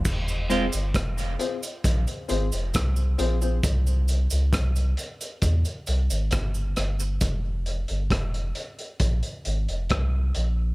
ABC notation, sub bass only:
X:1
M:4/4
L:1/16
Q:1/4=67
K:Fm
V:1 name="Sub bass" clef=bass
F,,,3 G,,, F,,,2 z2 B,,, z A,,, F,,, C,,2 B,,,2 | C,,3 D,, C,,2 z2 =E,, z C,, A,,, G,,,2 G,,,2 | F,,,3 G,,, F,,,2 z2 B,,, z A,,, F,,, C,,2 B,,,2 |]